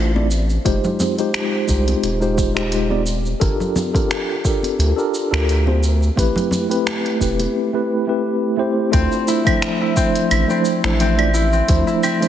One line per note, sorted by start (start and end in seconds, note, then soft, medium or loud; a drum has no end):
0.00 0.58 A1 medium
0.00 0.10 A3 medium
0.00 0.10 D4 medium
0.00 0.11 E4 medium
0.00 0.11 F4 medium
0.00 0.11 C5 medium
0.14 0.26 A3 medium
0.14 0.26 D4 medium
0.14 0.26 E4 medium
0.14 0.27 F4 medium
0.14 0.27 D5 medium
0.14 high conga loud
0.31 shaker medium
0.50 shaker soft
0.65 0.79 F1 medium
0.65 1.14 G#3 medium
0.65 1.14 D#4 medium
0.65 1.15 F4 medium
0.65 1.15 G4 medium
0.65 1.15 C5 loud
0.65 kick loud
0.65 closed hi-hat medium
0.65 shaker soft
0.84 low conga medium
0.84 shaker soft
1.00 high conga medium
1.00 low conga medium
1.00 shaker medium
1.18 1.65 G#3 medium
1.18 1.65 D#4 medium
1.18 1.65 F4 medium
1.18 1.66 G4 medium
1.18 1.66 C5 medium
1.18 closed hi-hat soft
1.18 shaker soft
1.34 finger snap medium
1.34 closed hi-hat medium
1.34 shaker soft
1.67 1.94 C2 medium
1.67 2.17 G#3 medium
1.67 2.17 D#4 medium
1.67 2.18 F4 medium
1.67 2.18 G4 medium
1.67 2.18 C5 medium
1.67 kick medium
1.67 shaker medium
1.88 closed hi-hat soft
1.88 high conga medium
1.88 shaker soft
2.03 3.34 D#1 medium
2.03 closed hi-hat medium
2.03 shaker soft
2.20 2.51 G#3 medium
2.20 2.51 D#4 medium
2.20 2.52 F4 medium
2.20 2.52 G4 medium
2.20 2.52 C5 medium
2.20 shaker soft
2.38 kick loud
2.38 shaker medium
2.54 2.86 G#3 medium
2.54 2.86 D#4 medium
2.54 2.86 F4 medium
2.54 2.86 G4 medium
2.54 2.87 C5 medium
2.54 finger snap medium
2.54 closed hi-hat soft
2.54 shaker soft
2.72 closed hi-hat medium
2.72 shaker soft
2.89 3.01 G#3 medium
2.89 3.02 D#4 medium
2.89 3.02 F4 medium
2.89 3.02 G4 medium
2.89 3.02 D5 medium
2.89 high conga medium
3.07 shaker medium
3.26 shaker soft
3.40 3.55 G1 loud
3.40 3.90 D4 medium
3.40 3.90 F4 medium
3.40 3.90 G4 medium
3.40 3.90 A4 medium
3.40 3.90 A#4 loud
3.40 kick loud
3.40 closed hi-hat medium
3.40 shaker soft
3.60 low conga medium
3.60 shaker soft
3.76 high conga medium
3.76 low conga medium
3.76 shaker medium
3.93 4.41 D4 medium
3.93 4.41 F4 medium
3.93 4.41 G4 medium
3.93 4.41 A4 medium
3.93 4.42 A#4 medium
3.93 kick medium
3.93 closed hi-hat soft
3.93 shaker soft
4.11 finger snap medium
4.11 closed hi-hat medium
4.11 shaker soft
4.44 4.94 D4 medium
4.44 4.94 F4 medium
4.44 4.94 G4 medium
4.44 4.93 A4 medium
4.44 4.94 A#4 medium
4.44 kick medium
4.44 shaker medium
4.63 closed hi-hat soft
4.63 high conga medium
4.63 shaker soft
4.79 4.92 D2 medium
4.79 closed hi-hat medium
4.79 shaker soft
4.96 5.28 D4 medium
4.96 5.28 F4 medium
4.96 5.28 G4 medium
4.96 5.27 A4 medium
4.96 5.28 A#4 medium
4.96 shaker soft
5.14 shaker medium
5.31 6.10 D2 medium
5.31 5.62 D4 medium
5.31 5.62 F4 medium
5.31 5.63 G4 medium
5.31 5.62 A4 medium
5.31 5.63 A#4 medium
5.31 finger snap medium
5.31 closed hi-hat soft
5.31 shaker soft
5.49 closed hi-hat medium
5.49 shaker soft
5.66 5.78 A3 medium
5.66 5.78 D4 medium
5.66 5.78 F4 medium
5.66 5.79 G4 medium
5.66 5.79 C5 medium
5.66 high conga medium
5.83 shaker medium
6.03 shaker soft
6.16 6.31 A1 loud
6.16 6.66 A3 medium
6.16 6.66 C4 medium
6.16 6.66 E4 medium
6.16 6.66 G4 medium
6.16 6.67 B4 loud
6.16 kick loud
6.16 closed hi-hat medium
6.16 shaker soft
6.36 closed hi-hat soft
6.36 low conga medium
6.36 shaker soft
6.51 high conga medium
6.51 low conga medium
6.51 shaker medium
6.69 7.16 A3 medium
6.69 7.17 C4 medium
6.69 7.17 E4 medium
6.69 7.17 G4 medium
6.69 7.17 B4 medium
6.69 closed hi-hat soft
6.69 shaker soft
6.87 finger snap medium
6.87 closed hi-hat medium
6.87 shaker soft
7.06 closed hi-hat soft
7.20 7.46 E1 medium
7.20 7.69 A3 medium
7.20 7.69 C4 medium
7.20 7.70 E4 medium
7.20 7.70 G4 medium
7.20 7.70 B4 medium
7.20 kick medium
7.20 shaker medium
7.40 closed hi-hat soft
7.40 high conga medium
7.40 shaker soft
7.73 8.04 A3 medium
7.73 8.04 C4 medium
7.73 8.04 E4 medium
7.73 8.04 G4 medium
7.73 8.05 B4 medium
8.07 8.54 A3 medium
8.07 8.55 C4 medium
8.07 8.55 E4 medium
8.07 8.55 G4 medium
8.07 8.55 B4 medium
8.57 8.89 A3 medium
8.57 8.89 C4 medium
8.57 8.89 E4 medium
8.57 8.90 G4 medium
8.57 8.90 C5 loud
8.91 9.07 D2 loud
8.91 9.41 A3 medium
8.91 9.47 C4 loud
8.91 9.41 D4 medium
8.91 9.42 E4 medium
8.91 9.42 F4 medium
8.91 9.42 C5 loud
8.91 kick loud
8.91 closed hi-hat medium
8.91 shaker soft
9.12 shaker soft
9.28 9.81 E4 medium
9.28 shaker medium
9.45 9.93 F3 medium
9.45 9.92 A3 medium
9.45 9.96 C4 medium
9.45 9.92 D4 medium
9.45 9.92 E4 medium
9.45 9.93 C5 loud
9.45 kick medium
9.45 closed hi-hat soft
9.45 claves medium
9.45 shaker soft
9.62 finger snap medium
9.62 closed hi-hat medium
9.62 shaker soft
9.81 10.31 E4 medium
9.95 10.45 F3 medium
9.95 10.45 A3 medium
9.95 10.50 C4 medium
9.95 10.45 D4 medium
9.95 10.45 E4 medium
9.95 10.46 C5 medium
9.95 kick medium
9.95 shaker medium
10.15 closed hi-hat soft
10.15 shaker soft
10.31 10.44 A1 medium
10.31 10.84 E4 medium
10.31 closed hi-hat medium
10.31 claves medium
10.31 shaker soft
10.48 10.80 F3 medium
10.48 10.79 A3 medium
10.48 11.00 C4 medium
10.48 10.79 D4 medium
10.48 10.80 E4 medium
10.48 10.80 C5 medium
10.48 shaker soft
10.65 shaker medium
10.84 11.61 A1 medium
10.84 11.15 F3 medium
10.84 11.14 A3 medium
10.84 11.14 D4 medium
10.84 11.34 E4 medium
10.84 11.15 E4 medium
10.84 11.15 C5 loud
10.84 finger snap medium
10.84 closed hi-hat soft
10.84 shaker soft
11.00 11.53 C4 loud
11.00 closed hi-hat medium
11.00 shaker soft
11.17 11.29 A3 medium
11.17 11.29 D4 medium
11.17 11.30 E4 medium
11.17 11.30 F4 medium
11.17 11.30 D5 medium
11.17 closed hi-hat soft
11.17 claves medium
11.34 11.87 E4 medium
11.34 shaker medium
11.53 12.03 C4 medium
11.53 shaker soft
11.68 11.82 D2 loud
11.68 12.18 F3 medium
11.68 12.17 A3 medium
11.68 12.18 D4 medium
11.68 12.18 E4 medium
11.68 12.18 C5 loud
11.68 kick loud
11.68 closed hi-hat medium
11.68 shaker soft
11.87 12.28 E4 medium
11.87 shaker soft
12.03 12.28 C4 loud
12.03 claves medium
12.03 shaker medium
12.20 12.28 F3 medium
12.20 12.28 A3 medium
12.20 12.28 D4 medium
12.20 12.28 E4 medium
12.20 12.28 C5 medium
12.20 closed hi-hat soft
12.20 shaker soft